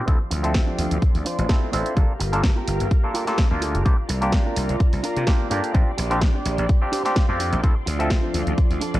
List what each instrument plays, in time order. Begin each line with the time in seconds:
0.07 slap bass D2, string machine F3 D5 C6, clav C4 E4 F4 A4, kick, closed hi-hat
0.21 muted slap bass stroke
0.31 slap bass D2, muted clean electric guitar stroke, open hi-hat, shaker
0.43 clav C4 F4 A4 E5, muted clean electric guitar stroke, closed hi-hat
0.54 kick, snare, closed hi-hat
0.67 clean electric guitar D4 F4 G4
0.79 slap bass D2, open hi-hat
0.91 slap bass D2, closed hi-hat
1.02 kick, closed hi-hat
1.15 slap bass D2, open hi-hat
1.25 clean electric guitar D4 F4 C5, open hi-hat
1.39 slap bass A1, closed hi-hat
1.49 clav C4 E4 F4 A4, kick, snare, closed hi-hat
1.72 slap bass A1, clav C4 E4 F4 A4, clean electric guitar D4 F4 C5, open hi-hat
1.86 closed hi-hat, shaker
1.96 slap bass G1, clav A#3 D4 F4 A4, string machine G4 A#4 F5, kick, closed hi-hat
2.09 muted slap bass stroke
2.20 slap bass G1, muted clean electric guitar stroke, open hi-hat
2.32 clav A#3 D4 F4 A4, muted clean electric guitar stroke, closed hi-hat
2.44 kick, snare, closed hi-hat
2.56 clean electric guitar F4 G4 A#4
2.67 slap bass G1, open hi-hat, shaker
2.80 slap bass G1, closed hi-hat
2.91 kick, closed hi-hat
3.04 clav A#3 D4 F4 A4, shaker
3.14 clean electric guitar F4 G4 A#4, open hi-hat, shaker
3.27 clav A#3 D4 F4 A4, snare, closed hi-hat
3.38 muted slap bass stroke, kick, snare, closed hi-hat
3.51 slap bass D2, clav A#3 D4 F4 A5
3.61 clean electric guitar F4 G4 A4, open hi-hat, shaker
3.75 slap bass G1, closed hi-hat
3.85 slap bass C2, clav A#3 D4 F4 G4, string machine F4 D5 A#5, kick, closed hi-hat
4.09 slap bass C2, muted clean electric guitar stroke, open hi-hat
4.21 clav A#3 D4 F4 G4, muted clean electric guitar stroke, closed hi-hat
4.32 kick, snare, closed hi-hat
4.45 clean electric guitar D4 F4 A#4
4.56 slap bass C2, open hi-hat, shaker
4.69 slap bass C2, closed hi-hat
4.80 kick, closed hi-hat
4.93 slap bass C2, open hi-hat
5.03 clean electric guitar D4 F4 A#4, open hi-hat, shaker
5.16 slap bass C3, closed hi-hat
5.27 clav A#3 D4 F4 G4, kick, snare, closed hi-hat
5.50 slap bass G2, clav A#3 D4 F4 G4, clean electric guitar D4 F4 A4, open hi-hat, shaker
5.64 closed hi-hat
5.74 slap bass A#1, clav C4 D4 F4 G4, string machine G4 C6, kick, closed hi-hat
5.98 slap bass A#1, muted clean electric guitar stroke, open hi-hat, shaker
6.10 clav C4 D4 F4 G4, muted clean electric guitar stroke, closed hi-hat
6.21 kick, snare, closed hi-hat
6.34 clean electric guitar D4 G4 D5
6.45 slap bass A#1, open hi-hat, shaker
6.58 slap bass A#1, closed hi-hat
6.69 kick, closed hi-hat
6.81 clav C4 D4 F4 G4, shaker
6.92 clean electric guitar D4 G4 C5 D5, open hi-hat, shaker
7.05 clav C4 D4 F4 G4, snare, closed hi-hat
7.16 clean electric guitar F5, muted slap bass stroke, kick, snare, closed hi-hat
7.29 slap bass F2, clav C4 D4 F4 G4, shaker
7.39 clean electric guitar D4 G4 C5 G5, open hi-hat, shaker
7.53 slap bass A#1, closed hi-hat, shaker
7.63 slap bass D2, string machine F3 D5, clav C4 E4 F4 A4, kick, closed hi-hat
7.76 muted slap bass stroke
7.86 slap bass D2, muted clean electric guitar stroke, open hi-hat, shaker
7.99 clav C4 F4 A4 E5, muted clean electric guitar stroke, closed hi-hat, shaker
8.10 kick, snare, closed hi-hat
8.22 clean electric guitar D4 F4 C5
8.34 slap bass D2, open hi-hat, shaker
8.47 slap bass D2, closed hi-hat, shaker
8.58 kick, closed hi-hat
8.71 slap bass D2, open hi-hat
8.81 clean electric guitar D4 F4 A4, open hi-hat, shaker
8.94 slap bass A1, closed hi-hat, shaker